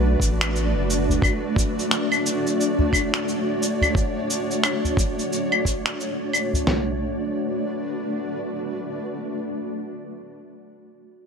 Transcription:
Already playing: analog synth bass B1, ambient pad A3 D4 F#4 B4 D5, singing bowl F#4
0.20 analog synth bass A1, kick, shaker
0.41 finger snap, claves, shaker
0.56 shaker
0.75 analog synth bass F#1
0.90 shaker
1.09 udu, shaker
1.22 ambient pad C#5, kick, claves, shaker
1.56 kick, shaker
1.79 shaker
1.91 finger snap, shaker
2.12 claves, shaker
2.26 shaker
2.47 shaker
2.61 shaker
2.79 udu
2.93 kick, claves, shaker
3.14 finger snap, shaker
3.28 shaker
3.63 shaker
3.81 udu, claves, shaker
3.95 kick, shaker
4.30 shaker
4.51 shaker
4.64 finger snap, claves, shaker
4.85 udu, shaker
4.97 kick, shaker
5.19 shaker
5.33 shaker
5.52 claves
5.65 kick, shaker
5.86 finger snap, shaker
6.00 shaker
6.33 claves, shaker
6.53 udu, shaker
6.66 ambient pad A3 D4 F#4 B4 D5, snare, floor tom

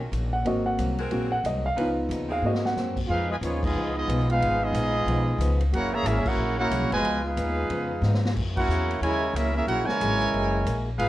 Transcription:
Already playing: upright bass B1, grand piano F3 F#3 C#4
0.12 upright bass A#1, steel-string acoustic guitar D#3 A#3 C#4 F#4, hi-hat pedal, ride
0.33 grand piano F#5
0.45 upright bass G#1, steel-string acoustic guitar G#2 F#3 A#3 C4, grand piano A#3 C4 F#4 D#5, ride
0.66 grand piano F#5
0.78 upright bass C2, steel-string acoustic guitar G#2 F#3 A#3 C4, hi-hat pedal, ride
0.98 saxophone section G#3 C4 F#4 A#4, ride
1.11 upright bass A#1, steel-string acoustic guitar G#2 F#3 A#3 C4, grand piano A#3 C4 F#4, ride
1.32 grand piano F#5
1.44 upright bass C2, steel-string acoustic guitar G#2 F#3 A#3 C4, grand piano D#5, hi-hat pedal, ride
1.66 grand piano F5
1.75 upright bass C#2, steel-string acoustic guitar C#3 F3 B3 D#4, saxophone section F3 C#4 D#4 B4, grand piano B3 D#4 F4, ride
2.09 upright bass D#2, steel-string acoustic guitar C#3 F3 B3 D#4, hi-hat pedal, ride
2.27 saxophone section G#3 C4 F#4 G#4
2.32 grand piano F5
2.42 upright bass G#2, steel-string acoustic guitar G#2 F#3 A#3 C4, grand piano A#3 C4
2.46 grand piano F#4 D#5
2.55 snare
2.65 grand piano F#5, snare
2.76 upright bass F#2, steel-string acoustic guitar G#2 F#3 A#3 C4, snare, hi-hat pedal
2.97 kick, crash
3.08 upright bass F2, steel-string acoustic guitar C#3 F3 B3, trombone section G#3 B3 F4, trumpet section D#4 G#4 B4 F5
3.12 steel-string acoustic guitar D#4
3.28 trombone section B2 F3 G#3, trumpet section F4 B4 D#5 G#5
3.41 upright bass D#2, steel-string acoustic guitar C#3 F3 B3 D#4, trombone section F3 G#3 C#4, trumpet section B3 F4 G#4 C#5, hi-hat pedal, ride
3.63 trombone section G#3 B3 D#4, trumpet section B3 F4 G#4 D#5, kick, crash
3.74 upright bass C#2, steel-string acoustic guitar C#3 F3 B3 D#4
3.94 trombone section G#3 B3 D#4, trumpet section B3 F4 G#4 D#5
4.08 upright bass B1, steel-string acoustic guitar C#3 F3 B3 D#4, hi-hat pedal, ride
4.29 trombone section G#3 B3 F4, trumpet section D#4 G#4 B4 F5, ride
4.40 upright bass G#1, steel-string acoustic guitar C#3 F3 B3 D#4, ride
4.59 trombone section G#3 B3 D#4
4.64 trumpet section B3 F4 G#4 D#5
4.73 upright bass A#1, steel-string acoustic guitar C#3 F3 B3 D#4, hi-hat pedal, ride
5.06 upright bass B1, steel-string acoustic guitar C#3 F3 B3 D#4, ride
5.38 upright bass C#2, steel-string acoustic guitar C#3 F3 B3 D#4, hi-hat pedal, ride
5.60 ride
5.71 upright bass F#1, steel-string acoustic guitar F#3 A#3 E4 G#4, trombone section A#3 C#4 F#4, trumpet section E4 A#4 C#5 F#5, ride
5.93 trombone section C#3 E3 A#3, trumpet section G#4 C#5 E5 A#5
6.03 upright bass G#1, steel-string acoustic guitar F#3 A#3 E4 G#4, trombone section A#3 C#4 E4, trumpet section C#4 G#4 A#4 E5, hi-hat pedal, ride
6.26 trombone section A#3 C#4 F#4, trumpet section E4 A#4 C#5 F#5, muted upright bass stroke, kick, crash
6.36 upright bass A#1, steel-string acoustic guitar F#3 A#3 E4 G#4
6.59 trombone section A#3 C#4 F#4, trumpet section E4 A#4 C#5 F#5
6.71 upright bass C2, steel-string acoustic guitar F#3 A#3 E4 G#4, hi-hat pedal, ride
6.81 upright bass A#1
6.92 upright bass F#1, trombone section B2 F3 G#3, trumpet section F4 B4 D#5 G#5, ride
7.03 upright bass C#2, steel-string acoustic guitar C#3 F3 B3 D#4, ride
7.25 trombone section G#3 B3 F4, trumpet section D#4 G#4 B4 F5
7.37 upright bass D#2, steel-string acoustic guitar C#3 F3 B3 D#4, hi-hat pedal, ride
7.70 upright bass F2, steel-string acoustic guitar C#3 F3 B3 D#4, ride
8.02 upright bass G#2, steel-string acoustic guitar C#3 F3 B3 D#4, snare, hi-hat pedal
8.14 snare
8.25 snare
8.36 upright bass F#2, steel-string acoustic guitar F#3 A#3 E4 G#4, kick, crash
8.55 trombone section A#3 C#4 F#4, trumpet section E4 A#4 C#5 F#5, kick, crash
8.68 upright bass E2, steel-string acoustic guitar F#3 A#3 E4 G#4, hi-hat pedal
8.91 ride
9.01 upright bass D#2, trombone section C#3 G#3 E4, steel-string acoustic guitar F#3 A#3, trumpet section E4 A#4 C#5 G#5, ride
9.05 steel-string acoustic guitar E4 G#4
9.33 upright bass C#2, steel-string acoustic guitar F#3 A#3, trombone section A#3 C#4 E4, trumpet section C#4 G#4 A#4 E5, hi-hat pedal, ride
9.37 steel-string acoustic guitar E4 G#4
9.54 trombone section A#3 C#4 E4, trumpet section C#4 G#4 A#4 E5
9.67 upright bass A#1, steel-string acoustic guitar F#3 A#3 E4, trombone section A#3 C#4 F#4, trumpet section E4 A#4 C#5 F#5, ride
9.71 steel-string acoustic guitar G#4
9.86 trombone section C#3 E3 G#3, trumpet section E4 A#4 C#5 G#5, muted upright bass stroke, snare
10.01 upright bass G#1, steel-string acoustic guitar F#3 A#3 E4 G#4, hi-hat pedal, ride
10.22 ride
10.33 upright bass F#1, steel-string acoustic guitar F#3 A#3 E4, ride
10.37 steel-string acoustic guitar G#4
10.65 upright bass A#1, steel-string acoustic guitar F#3 A#3 E4 G#4, hi-hat pedal, ride
10.98 upright bass G#1, steel-string acoustic guitar C#3 B3 D#4, trombone section G#3 B3 F4, trumpet section D#4 G#4 B4 F5, ride

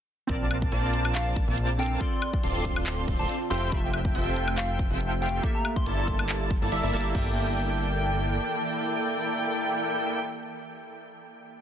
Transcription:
0.27 analog synth bass A#1, ambient pad C3 D4, synth keys C4 A#4 A5, supersaw synth C4 F4 A#4 D5 A5, digital synth lead A5, kick, closed hi-hat
0.31 synth keys D5
0.51 closed hi-hat, high woodblock
0.62 kick
0.72 analog synth bass A#1, supersaw synth C4 F4 A#4 D5 A5, digital synth lead A5, closed hi-hat
0.94 closed hi-hat
1.05 high woodblock
1.15 soft synth lead F5, clap, closed hi-hat
1.36 kick, closed hi-hat
1.48 analog synth bass A#1, supersaw synth C4 F4 A#4 D5 A5, digital synth lead A5
1.58 closed hi-hat
1.78 synth keys C4 A4 A#4 F5, soft synth lead G5, closed hi-hat
1.83 closed hi-hat
1.86 closed hi-hat
1.98 ambient pad D3 C4 F4, synth keys C4 F4 A4 D5, soft synth lead C6, kick, closed hi-hat
2.22 closed hi-hat, high woodblock
2.34 kick
2.43 analog synth bass D1, supersaw synth C4 F4 A4 D5 C6, digital synth lead C6, closed hi-hat
2.65 kick, closed hi-hat
2.76 high woodblock
2.86 clap, closed hi-hat
3.08 analog synth bass D1, supersaw synth C4 F4 A4 D5 C6, digital synth lead C6, kick, closed hi-hat
3.19 analog synth bass D1, supersaw synth C4 F4 A4 D5 C6, soft synth lead A5, digital synth lead C6
3.29 soft synth lead A5, closed hi-hat
3.50 analog synth bass F1, synth keys A3 F4 G4 F5, ambient pad A3 G4, supersaw synth C4 F4 A4 E5 G5, digital synth lead G5, soft synth lead C6, closed hi-hat
3.55 closed hi-hat
3.58 closed hi-hat
3.70 analog synth bass F1, synth keys A3 F4 G4, supersaw synth C4 F4 A4 E5 G5, digital synth lead G5, kick, closed hi-hat
3.74 synth keys E5
3.94 closed hi-hat, high woodblock
4.05 kick
4.15 analog synth bass F1, supersaw synth C4 F4 A4 E5 G5, digital synth lead G5, closed hi-hat
4.36 closed hi-hat
4.48 high woodblock
4.58 soft synth lead F5, clap, closed hi-hat
4.79 kick, closed hi-hat
4.91 analog synth bass F1, supersaw synth C4 F4 A4 E5 G5, digital synth lead G5
5.00 closed hi-hat
5.21 synth keys A3 F4 G4 F5, soft synth lead G5, closed hi-hat
5.26 closed hi-hat
5.29 closed hi-hat
5.42 synth keys A#3 G4 A4, ambient pad A#3 A4, kick, closed hi-hat
5.46 synth keys E5
5.55 soft synth lead A#5
5.65 closed hi-hat, high woodblock
5.76 soft synth lead C6, kick
5.86 analog synth bass G1, supersaw synth A#3 E4 A4 D5 A5, digital synth lead A5, closed hi-hat
6.08 kick, closed hi-hat
6.19 high woodblock
6.29 clap, closed hi-hat
6.51 kick, closed hi-hat
6.62 analog synth bass G1, supersaw synth A#3 E4 A4 D5 A5, digital synth lead A5
6.72 analog synth bass G1, supersaw synth A#3 E4 A4 D5 E5, digital synth lead E5, closed hi-hat
6.83 analog synth bass G1, supersaw synth A#3 E4 A4 D5 E5, digital synth lead E5
6.93 analog synth bass G1, synth keys A#3 G4 A4 E5, supersaw synth A#3 E4 A4 D5 A5, digital synth lead A5, closed hi-hat
6.97 closed hi-hat
7.01 closed hi-hat
7.12 analog synth bass G1, ambient pad E3 A#3 A4, synth keys A#3 G4, supersaw synth A#3 E4 A4 D5 G5, digital synth lead G5, kick, crash
7.16 synth keys A4 E5

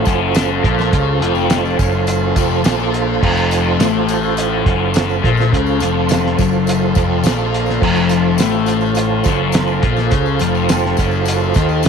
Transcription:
Already playing: tonewheel organ F4 A4 C5
0.05 picked electric bass F#1, distorted electric guitar F#2 F#3, kick, closed hi-hat, tambourine
0.35 snare, closed hi-hat, tambourine
0.63 picked electric bass A#1, distorted electric guitar A#2 A#3, kick, closed hi-hat
0.79 snare, tambourine
0.91 picked electric bass C#2, distorted electric guitar C#3 C#4, kick, closed hi-hat, tambourine
1.21 picked electric bass F1, distorted electric guitar F2 F3, closed hi-hat
1.35 tambourine
1.50 snare, closed hi-hat, tambourine
1.65 tambourine
1.78 picked electric bass F#1, distorted electric guitar F#2 F#3, kick, closed hi-hat, tambourine
2.07 closed hi-hat, tambourine
2.36 picked electric bass F1, distorted electric guitar F2 F3, kick, closed hi-hat, tambourine
2.50 tambourine
2.64 picked electric bass A#1, distorted electric guitar A#2 A#3, snare, closed hi-hat, tambourine
2.79 tambourine
2.94 closed hi-hat, tambourine
3.22 picked electric bass F1, distorted electric guitar F2 F3, kick, crash
3.37 tambourine
3.51 closed hi-hat, tambourine
3.80 picked electric bass A1, distorted electric guitar A2 A3, snare, closed hi-hat, tambourine
4.08 closed hi-hat, tambourine
4.23 tambourine
4.37 closed hi-hat, tambourine
4.65 picked electric bass F#1, distorted electric guitar F#2 F#3, kick, closed hi-hat
4.94 snare, closed hi-hat, tambourine
5.09 tambourine
5.22 picked electric bass A#1, distorted electric guitar A#2 A#3, kick, closed hi-hat
5.37 snare, tambourine
5.53 picked electric bass C#2, distorted electric guitar C#3 C#4, kick, closed hi-hat
5.66 tambourine
5.80 picked electric bass F1, distorted electric guitar F2 F3, closed hi-hat, tambourine
6.09 snare, closed hi-hat, tambourine
6.26 snare
6.38 picked electric bass F#1, distorted electric guitar F#2 F#3, kick, closed hi-hat, tambourine
6.52 tambourine
6.67 closed hi-hat, tambourine
6.95 picked electric bass F1, distorted electric guitar F2 F3, kick, closed hi-hat, tambourine
7.24 picked electric bass A#1, distorted electric guitar A#2 A#3, snare, closed hi-hat, tambourine
7.38 tambourine
7.54 closed hi-hat
7.66 snare, tambourine
7.82 picked electric bass F1, distorted electric guitar F2 F3, kick, crash
7.95 tambourine
8.09 closed hi-hat, tambourine
8.38 picked electric bass A1, distorted electric guitar A2 A3, snare, closed hi-hat, tambourine
8.66 closed hi-hat, tambourine
8.81 tambourine
8.95 closed hi-hat, tambourine
9.24 picked electric bass F#1, distorted electric guitar F#2 F#3, kick, closed hi-hat, tambourine
9.52 snare, closed hi-hat, tambourine
9.67 tambourine
9.82 picked electric bass A#1, distorted electric guitar A#2 A#3, kick, closed hi-hat
9.96 snare, tambourine
10.11 picked electric bass C#2, distorted electric guitar C#3 C#4, kick, closed hi-hat, tambourine
10.26 tambourine
10.39 picked electric bass F1, distorted electric guitar F2 F3, closed hi-hat, tambourine
10.55 tambourine
10.69 snare, closed hi-hat, tambourine
10.86 snare
10.97 picked electric bass F#1, distorted electric guitar F#2 F#3, kick, closed hi-hat, tambourine
11.11 tambourine
11.25 closed hi-hat, tambourine
11.40 tambourine
11.54 picked electric bass D#2, distorted electric guitar D#3 D#4, kick, closed hi-hat, tambourine
11.69 tambourine
11.83 picked electric bass C#2, distorted electric guitar C#3 C#4, closed hi-hat, tambourine

